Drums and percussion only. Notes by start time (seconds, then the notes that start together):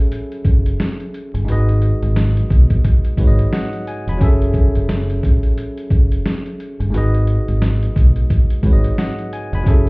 0.12 closed hi-hat
0.32 closed hi-hat
0.45 kick, closed hi-hat
0.66 closed hi-hat
0.80 snare, closed hi-hat
1.00 closed hi-hat
1.14 closed hi-hat
1.35 closed hi-hat
1.48 closed hi-hat
1.69 closed hi-hat
1.82 closed hi-hat
2.02 closed hi-hat
2.16 snare, closed hi-hat
2.37 closed hi-hat
2.50 kick, closed hi-hat
2.70 kick, closed hi-hat
2.85 kick, closed hi-hat
3.05 closed hi-hat
3.17 kick, closed hi-hat
3.39 closed hi-hat
3.53 snare, closed hi-hat
3.73 closed hi-hat
3.87 closed hi-hat
4.08 closed hi-hat
4.21 kick, closed hi-hat
4.42 closed hi-hat
4.54 kick, closed hi-hat
4.75 closed hi-hat
4.89 snare, closed hi-hat
5.10 closed hi-hat
5.23 kick, closed hi-hat
5.43 closed hi-hat
5.58 closed hi-hat
5.77 closed hi-hat
5.90 kick, closed hi-hat
6.12 closed hi-hat
6.26 snare, closed hi-hat
6.46 closed hi-hat
6.60 closed hi-hat
6.80 closed hi-hat
6.94 closed hi-hat
7.14 closed hi-hat
7.27 closed hi-hat
7.48 closed hi-hat
7.62 snare, closed hi-hat
7.83 closed hi-hat
7.96 kick, closed hi-hat
8.16 closed hi-hat
8.30 kick, closed hi-hat
8.50 closed hi-hat
8.63 kick, closed hi-hat
8.84 closed hi-hat
8.98 snare, closed hi-hat
9.19 closed hi-hat
9.33 closed hi-hat
9.53 closed hi-hat
9.66 kick, closed hi-hat